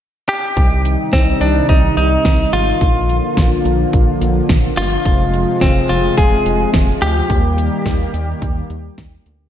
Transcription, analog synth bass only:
0.57 C2
1.13 C2
1.41 C2
1.69 C2
1.97 C2
2.25 C2
2.53 G#1
2.81 A#1
3.37 A#1
3.65 A#1
3.93 A#1
4.21 A#1
4.49 A#1
4.77 G1
5.05 F1
5.62 F1
5.90 F1
6.18 F1
6.46 F1
6.74 F1
7.02 D2
7.30 D#2
7.86 D#2
8.14 D#2
8.42 D#2
8.70 D#2
8.98 D#2
9.26 D2

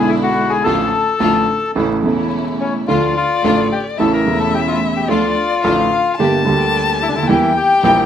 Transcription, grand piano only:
Already playing: B1 B2 D3 G#3 B3 E4
0.66 A1 A2 D3 F3 A3 F4
1.20 A1 A2 D3 F3 A3 F4
1.75 A1 A2 C#3 E3 A3 E4
2.02 E1 E2 C#3 E3 A3 E4
2.88 D2 D3 F3 A3 F4
3.44 A1 A2 D3 F3 A3 F4
3.99 A1 A2 C#3 E3 A3 E4
4.25 E1 E2 C#3 E3 A3
4.29 E4
5.09 D2 D3 F3 A3 F4
5.65 A1 A2 D3 F3 A3 F4
6.19 G1 G2 D3 G3 A#3 G4
6.45 D2 D3 G3 A#3
6.49 G4
7.08 C#2
7.15 D2
7.23 D#2
7.29 E2 E3 G3 A#3 G4
7.83 A#1 A#2 E3 G3 A#3 G4

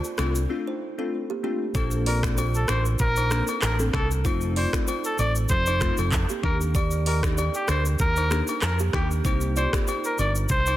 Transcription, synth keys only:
0.18 A3 C4 D4 F4
0.49 A3 C4 D4 F4
0.98 A3 C4 D4 F4
1.43 A3 C4 D4 F4
1.74 A#3 C4 D4 A4
2.23 A#3 C4 D4 A4
3.31 A#3 C4 D4 A4
3.79 A#3 C4 D4 A4
4.24 A3 C4 D#4 F4
4.73 A3 C4 D#4 F4
5.81 A3 C4 D#4 F4
6.43 A#3 D4 D#4 G4
7.23 A#3 D4 D#4 G4
8.31 A#3 D4 D#4 G4
8.93 A#3 D4 D#4 G4
9.24 A#3 C4 D#4 G4
9.73 A#3 C4 D#4 G4

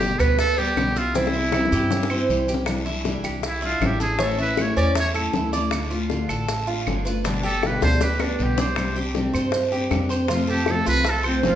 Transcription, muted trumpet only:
Already playing: G4
0.20 B4
0.40 A4
0.58 G4
0.98 F4
1.16 E4
3.48 E4
3.65 F4
3.86 G4
4.02 G#4
4.23 A4
4.41 B4
4.62 C#5
4.77 D5
5.00 C#5
7.45 A4
7.67 B4
7.83 C5
8.03 B4
8.22 D4
8.43 G4
8.60 C5
10.50 G4
10.72 A4
10.88 B4
11.10 A4
11.28 C4
11.48 F4

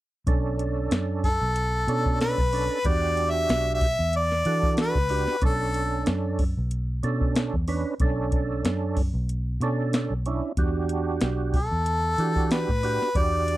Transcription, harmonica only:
1.25 A4
2.21 B4
2.87 D5
3.31 E5
3.75 E5
4.16 D5
4.81 B4
5.45 A4
11.57 A4
12.52 B4
13.17 D5

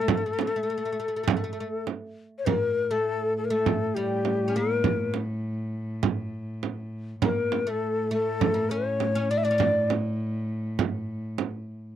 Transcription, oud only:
0.01 A3
0.17 A3
0.26 A3
0.33 A3
0.41 A3
0.47 A3
0.56 A3
0.63 A3
0.70 A3
0.78 A3
0.85 A3
0.92 A3
1.00 A3
1.08 A3
1.16 A3
1.23 A3
1.30 A3
1.37 A3
1.44 A3
1.53 A3
1.60 A3
2.46 A#3
2.91 A3
3.50 A3
3.96 G3
4.48 C#4
4.56 A#3
7.22 A#3
7.67 A3
8.11 A3
8.54 A#3
8.71 C#4
9.15 C#4
9.31 D4
9.45 D4
9.51 C#4
9.58 D4

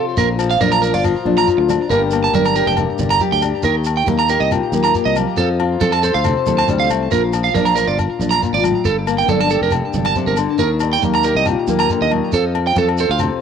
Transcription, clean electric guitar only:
0.18 A#4
0.51 F5
0.61 A#4
0.72 A#5
0.82 A#4
0.94 D5
1.38 A#5
1.58 muted clean electric guitar stroke
1.90 A#4
2.24 A5
2.35 A#4
2.46 A#5
2.56 A#4
2.67 G5
3.11 A#5
3.32 G5
3.64 A#4
3.97 G5
4.08 muted clean electric guitar stroke
4.19 A#5
4.30 A#4
4.40 D#5
4.84 A#5
5.05 D#5
5.38 A4
5.81 A4
5.92 A5
6.03 A4
6.14 F5
6.58 A5
6.79 F5
7.12 A#4
7.44 F5
7.55 A#4
7.65 A#5
7.75 A#4
7.88 D5
8.31 A#5
8.54 D5
8.85 A4
9.18 G5
9.29 A4
9.41 A5
9.51 A4
9.63 A#4
10.06 A5
10.28 A#4
10.59 A#4
10.93 G5
11.15 A#5
11.24 A#4
11.37 D#5
11.80 A#5
12.02 D#5
12.34 A4
12.67 G5
12.78 A4
13.00 A4
13.11 F5

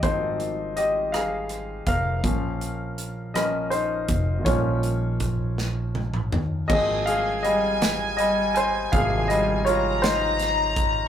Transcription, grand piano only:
Already playing: G4 G#4 D5 D#5
0.03 F3 A#3 C4 D#4 C5
0.77 G4 D#5
1.12 G#4 F5
1.87 A#4 F5
2.23 F3 A#3 C#4
3.34 F3 A#3 C#4 A#4 D#5
3.70 D#4 C5
4.45 F3 A#3 C#4 F4 C#5
6.68 F3 A#3 C4 G#4 D#5
7.06 G#4 F5
7.43 G3 D#5
8.17 G3 D#5
8.55 C5 G#5
8.92 C3 F3 A#3 G#4 F5
9.28 G3 D#5
9.65 F4 C#5
10.02 D#4 C5

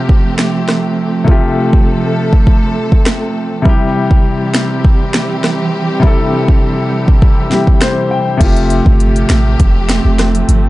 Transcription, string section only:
Already playing: F3 A3 C4 G4
1.28 A4
3.66 E3 G3 C4 G4
8.41 F3 A3 C4 G4

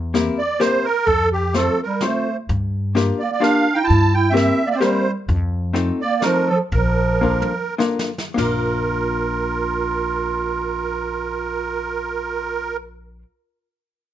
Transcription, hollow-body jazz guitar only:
0.14 A#3 C4 E4 G4 A#4
0.60 A#3 C4 E4 G4 A#4
1.54 A3 C4 F4 A4 C5
2.02 A3 C4 F4 A4 C5
2.95 A#3 D4 F4 G4 A#4
3.40 A#3 D4 F4 G4 A#4
4.33 A#3 C4 E4 G4 A#4
4.80 A#3 C4 E4 G4 A#4
5.73 A3 C4 D#4 F4 A4
6.22 A3 C4 D#4 F4 A4
7.21 A#3 D4 F4 A4 A#4
7.78 A#3 D4 F4 A4 A#4
8.34 A#3 D4 F4 A#4

